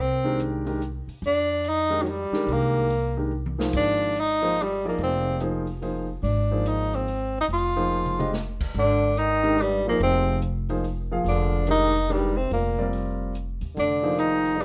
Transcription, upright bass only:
0, 0, Header, 1, 3, 480
1, 0, Start_track
1, 0, Tempo, 418118
1, 1413, Time_signature, 3, 2, 24, 8
1, 16816, End_track
2, 0, Start_track
2, 0, Title_t, "Upright bass"
2, 0, Program_c, 0, 32
2, 0, Note_on_c, 0, 36, 67
2, 1189, Note_off_c, 0, 36, 0
2, 1400, Note_on_c, 0, 41, 71
2, 2625, Note_off_c, 0, 41, 0
2, 2834, Note_on_c, 0, 36, 72
2, 4233, Note_off_c, 0, 36, 0
2, 4290, Note_on_c, 0, 32, 73
2, 5681, Note_off_c, 0, 32, 0
2, 5719, Note_on_c, 0, 29, 70
2, 7116, Note_off_c, 0, 29, 0
2, 7150, Note_on_c, 0, 32, 72
2, 8553, Note_off_c, 0, 32, 0
2, 8592, Note_on_c, 0, 29, 71
2, 9995, Note_off_c, 0, 29, 0
2, 10039, Note_on_c, 0, 32, 72
2, 11440, Note_off_c, 0, 32, 0
2, 11477, Note_on_c, 0, 29, 74
2, 12879, Note_off_c, 0, 29, 0
2, 12907, Note_on_c, 0, 29, 73
2, 14314, Note_off_c, 0, 29, 0
2, 14363, Note_on_c, 0, 29, 68
2, 15590, Note_off_c, 0, 29, 0
2, 15626, Note_on_c, 0, 39, 61
2, 15793, Note_off_c, 0, 39, 0
2, 15808, Note_on_c, 0, 29, 75
2, 16816, Note_off_c, 0, 29, 0
2, 16816, End_track
3, 0, Start_track
3, 0, Title_t, "Muted upright bass strokes"
3, 1232, Note_on_c, 9, 29, 36
3, 1347, Note_off_c, 9, 29, 0
3, 2657, Note_on_c, 9, 29, 34
3, 2772, Note_off_c, 9, 29, 0
3, 16816, End_track
0, 0, End_of_file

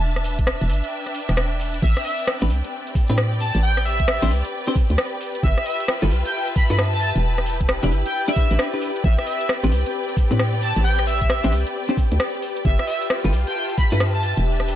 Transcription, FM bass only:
0, 0, Header, 1, 2, 480
1, 0, Start_track
1, 0, Key_signature, 0, "minor"
1, 0, Tempo, 451128
1, 21, Time_signature, 4, 2, 24, 8
1, 15700, End_track
2, 0, Start_track
2, 0, Title_t, "FM bass"
2, 0, Program_c, 0, 39
2, 0, Note_on_c, 0, 28, 102
2, 622, Note_off_c, 0, 28, 0
2, 653, Note_on_c, 0, 28, 97
2, 739, Note_on_c, 0, 31, 86
2, 755, Note_off_c, 0, 28, 0
2, 874, Note_off_c, 0, 31, 0
2, 1373, Note_on_c, 0, 28, 90
2, 1922, Note_off_c, 0, 28, 0
2, 1942, Note_on_c, 0, 33, 98
2, 2075, Note_off_c, 0, 33, 0
2, 2575, Note_on_c, 0, 33, 97
2, 2659, Note_on_c, 0, 36, 85
2, 2675, Note_off_c, 0, 33, 0
2, 2794, Note_off_c, 0, 36, 0
2, 3295, Note_on_c, 0, 45, 91
2, 3743, Note_off_c, 0, 45, 0
2, 3774, Note_on_c, 0, 33, 102
2, 4463, Note_off_c, 0, 33, 0
2, 4494, Note_on_c, 0, 33, 99
2, 4580, Note_on_c, 0, 36, 88
2, 4596, Note_off_c, 0, 33, 0
2, 4714, Note_off_c, 0, 36, 0
2, 5215, Note_on_c, 0, 38, 97
2, 5290, Note_off_c, 0, 38, 0
2, 5781, Note_on_c, 0, 31, 102
2, 5915, Note_off_c, 0, 31, 0
2, 6416, Note_on_c, 0, 31, 100
2, 6502, Note_on_c, 0, 35, 84
2, 6518, Note_off_c, 0, 31, 0
2, 6635, Note_off_c, 0, 35, 0
2, 7134, Note_on_c, 0, 43, 85
2, 7583, Note_off_c, 0, 43, 0
2, 7613, Note_on_c, 0, 28, 104
2, 8302, Note_off_c, 0, 28, 0
2, 8334, Note_on_c, 0, 28, 98
2, 8420, Note_on_c, 0, 31, 86
2, 8436, Note_off_c, 0, 28, 0
2, 8554, Note_off_c, 0, 31, 0
2, 9054, Note_on_c, 0, 33, 96
2, 9130, Note_off_c, 0, 33, 0
2, 9620, Note_on_c, 0, 33, 97
2, 9754, Note_off_c, 0, 33, 0
2, 10253, Note_on_c, 0, 33, 95
2, 10341, Note_on_c, 0, 36, 89
2, 10357, Note_off_c, 0, 33, 0
2, 10475, Note_off_c, 0, 36, 0
2, 10974, Note_on_c, 0, 45, 87
2, 11423, Note_off_c, 0, 45, 0
2, 11453, Note_on_c, 0, 33, 103
2, 12142, Note_off_c, 0, 33, 0
2, 12174, Note_on_c, 0, 33, 98
2, 12260, Note_on_c, 0, 36, 88
2, 12276, Note_off_c, 0, 33, 0
2, 12394, Note_off_c, 0, 36, 0
2, 12894, Note_on_c, 0, 38, 97
2, 12970, Note_off_c, 0, 38, 0
2, 13461, Note_on_c, 0, 31, 98
2, 13594, Note_off_c, 0, 31, 0
2, 14094, Note_on_c, 0, 31, 99
2, 14179, Note_on_c, 0, 35, 86
2, 14195, Note_off_c, 0, 31, 0
2, 14314, Note_off_c, 0, 35, 0
2, 14815, Note_on_c, 0, 43, 88
2, 15263, Note_off_c, 0, 43, 0
2, 15293, Note_on_c, 0, 28, 99
2, 15700, Note_off_c, 0, 28, 0
2, 15700, End_track
0, 0, End_of_file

